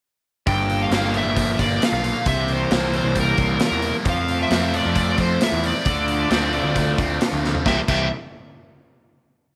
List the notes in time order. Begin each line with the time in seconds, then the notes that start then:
0.46 G1 G2 A#3 D4 G4 G5, kick, open hi-hat
0.70 open hi-hat
0.82 F5
0.91 G1 A#3, snare, open hi-hat
1.13 D3 E5, open hi-hat
1.25 G1
1.34 F3, kick, open hi-hat
1.58 G1 A#3 D5, kick, open hi-hat
1.80 F4, snare, open hi-hat
1.84 F5
1.92 B1
2.03 A#3, open hi-hat
2.26 C2 C3 E3 A#3 C4 G4 E5, kick, open hi-hat
2.48 open hi-hat
2.53 C5
2.71 C2 A#3, snare, open hi-hat
2.94 C3 C5, open hi-hat
3.04 C2
3.15 G3, kick, open hi-hat
3.20 A#4
3.38 C2 A#3, kick, open hi-hat
3.60 E4, snare, open hi-hat
3.65 A#4
3.71 E2
3.82 A#3, open hi-hat
4.04 F2 F3 A3 C4 F4, kick, open hi-hat
4.10 F5
4.28 open hi-hat
4.42 E5
4.51 F2 C4, snare, open hi-hat
4.73 F3 D5, open hi-hat
4.86 F2
4.95 A3, kick, open hi-hat
5.18 F2 C4 C5, kick, open hi-hat
5.41 E4 E5, snare, open hi-hat
5.52 E2
5.63 C4 D5, open hi-hat
5.85 D2 D3 A3 D4 F4, kick, open hi-hat
6.08 open hi-hat
6.30 D2 C4, snare, open hi-hat
6.52 D3, open hi-hat
6.64 D2
6.75 A3, kick, open hi-hat
6.98 D2 C4, kick, open hi-hat
7.20 F4, snare, open hi-hat
7.33 D2
7.44 C4, snare
7.55 floor tom
7.65 C2 C3 E3 G3 A#3 C4 E4 G4 E5, kick, snare
7.88 C2 C3 E3 G3 A#3 C4 E4 G4 E5, kick, crash